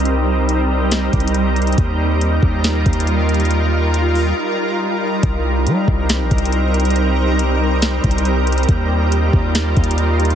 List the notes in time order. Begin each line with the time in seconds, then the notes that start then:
Already playing: C2 G3 C4 D#4 A#4
0.05 closed hi-hat
0.49 closed hi-hat
0.91 snare, closed hi-hat
1.13 C2, kick, closed hi-hat
1.20 closed hi-hat
1.28 closed hi-hat
1.34 closed hi-hat
1.56 closed hi-hat
1.62 closed hi-hat
1.67 closed hi-hat
1.72 closed hi-hat
1.78 D#2 F4 A#4, kick, closed hi-hat
2.21 closed hi-hat
2.43 D#2, kick
2.64 snare, closed hi-hat
2.86 D#2, kick, closed hi-hat
2.93 closed hi-hat
3.00 closed hi-hat
3.07 closed hi-hat
3.29 closed hi-hat
3.34 closed hi-hat
3.40 closed hi-hat
3.45 closed hi-hat
3.51 closed hi-hat
3.94 closed hi-hat
4.15 open hi-hat
5.23 C2 G3 C4 D#4 A#4, kick, closed hi-hat
5.66 G3, closed hi-hat
5.88 C2, kick
6.09 snare, closed hi-hat
6.20 A#1
6.31 C2, kick, closed hi-hat
6.38 closed hi-hat
6.45 closed hi-hat
6.52 closed hi-hat
6.74 closed hi-hat
6.80 closed hi-hat
6.85 closed hi-hat
6.90 closed hi-hat
6.96 closed hi-hat
7.39 closed hi-hat
7.82 snare, closed hi-hat
8.04 C2, kick, closed hi-hat
8.11 closed hi-hat
8.18 closed hi-hat
8.25 closed hi-hat
8.47 closed hi-hat
8.52 closed hi-hat
8.58 closed hi-hat
8.63 closed hi-hat
8.69 D#2 F4 A#4, kick, closed hi-hat
9.12 closed hi-hat
9.33 D#2, kick
9.55 snare, closed hi-hat
9.77 D#2, kick, closed hi-hat
9.84 closed hi-hat
9.91 closed hi-hat
9.98 closed hi-hat
10.20 closed hi-hat
10.25 closed hi-hat
10.30 closed hi-hat